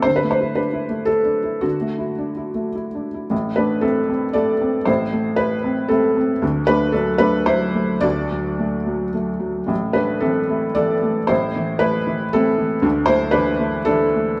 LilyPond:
<<
  \new Staff \with { instrumentName = "Felt piano" } { \time 3/4 \key a \dorian \tempo 4 = 113 c''16 b'16 c''8 b'4 a'4 | fis'2 r4 | r8 <d' b'>8 <c' a'>4 <a' d''>4 | <e' c''>4 <e' b'>4 <c' a'>4 |
r8 <d' b'>8 <d' a'>8 <d' b'>8 <e' c''>4 | <fis' d''>2 r4 | r8 <d' b'>8 <c' a'>4 <a' d''>4 | <e' c''>4 <e' b'>4 <c' a'>4 |
r8 <e' c''>8 <d' b'>4 <d' a'>4 | }
  \new Staff \with { instrumentName = "Felt piano" } { \time 3/4 \key a \dorian \tuplet 3/2 { d8 a8 e'8 d'8 e'8 a8 e'8 d'8 e'8 } | \tuplet 3/2 { d8 a8 e'8 d'8 e'8 a8 e'8 d'8 e'8 } | <a,, a,>8 a8 e'8 c'8 a8 c'8 | <a,, a,>8 a4 c'8 a8 c'8 |
<d, d>8 a8 fis8 a8 fis8 a8 | <d, d>8 fis8 a8 fis8 a8 fis8 | <a,, a,>8 a8 e8 a8 e8 a8 | <a,, a,>8 e8 a8 e8 a8 e8 |
<d, d>8 a8 e8 a8 e8 a8 | }
>>